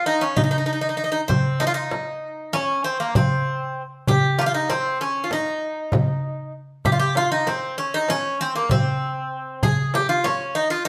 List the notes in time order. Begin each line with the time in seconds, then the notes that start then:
0.06 D#4
0.21 C#4
0.36 D#4, darbuka dum, frame drum
0.44 D#4
0.51 D#4
0.58 D#4
0.66 D#4
0.73 D#4
0.81 D#4
0.89 D#4
0.97 D#4
1.04 D#4
1.12 D#4
1.28 C4, darbuka dum, frame drum
1.60 D#4, darbuka tek, frame drum
1.67 F4
1.74 D#4
1.91 darbuka tek, frame drum
2.53 C#4, darbuka tek, frame drum
2.84 C4
3.00 A#3
3.15 C4, frame drum, darbuka dum
4.08 G4, darbuka dum, frame drum
4.39 F4 G4, darbuka tek, frame drum
4.46 F4
4.54 D#4
4.69 C4, darbuka tek, frame drum
5.01 C#4
5.24 F4
5.31 D#4, darbuka tek, frame drum
5.92 darbuka dum, frame drum
6.85 G4, darbuka dum, frame drum
6.92 F4
6.99 G4
7.15 F4, darbuka tek, frame drum
7.32 D#4
7.47 C4, darbuka tek, frame drum
7.78 C#4
7.94 D#4
8.08 C#4, darbuka tek, frame drum
8.41 C4
8.56 A#3
8.70 C4, darbuka dum, frame drum
9.63 G#4, frame drum, darbuka dum
9.94 G4, darbuka tek, frame drum
10.09 F4
10.24 C#4, darbuka tek, frame drum
10.55 D#4
10.70 F4
10.85 D#4